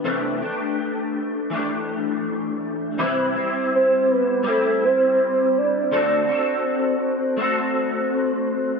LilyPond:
<<
  \new Staff \with { instrumentName = "Soft synth lead" } { \time 4/4 \key c \lydian \tempo 4 = 82 r1 | r4 c''8 b'8 a'8 c''4 d''8~ | d''2 r2 | }
  \new Staff \with { instrumentName = "Clean electric guitar" } { \time 4/4 \key c \lydian <c e a d' g'>8 <a d' g'>4. <e a d' g'>2 | <c e g c' e' b'>8 <g c' e'>4. <g c' e'>2 | <d a c' fis' a'>8 <c' fis' a'>4. <a c' fis' a'>2 | }
>>